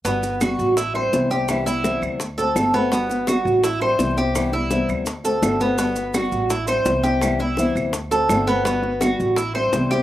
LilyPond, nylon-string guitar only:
\new Staff \with { instrumentName = "Nylon-string guitar" } { \time 4/4 \key g \major \tempo 4 = 167 <g b fis'>8 <b fis'>8 <g b fis'>4 r8 <g c' e'>8 <e g c' e'>8 <g c' e'>8 | <c e g b e'>8 <g b e'>8 <c e g b e'>4 r8 <a c' fis'>8 <d a c' fis'>8 <a c' fis'>8 | <g b fis'>8 <b fis'>8 <g b fis'>4 r8 <g c' e'>8 <e g c' e'>8 <g c' e'>8 | <c e g b e'>8 <g b e'>8 <c e g b e'>4 r8 <a c' fis'>8 <d a c' fis'>8 <a c' fis'>8 |
<g b fis'>8 <b fis'>8 <g b fis'>4 r8 <g c' e'>8 <e g c' e'>8 <g c' e'>8 | <c e g b e'>8 <g b e'>8 <c e g b e'>4 r8 <a c' fis'>8 <d a c' fis'>8 <a c' fis'>8 | <g b fis'>8 <b fis'>8 <g b fis'>4 r8 <g c' e'>8 <e g c' e'>8 <g c' e'>8 | }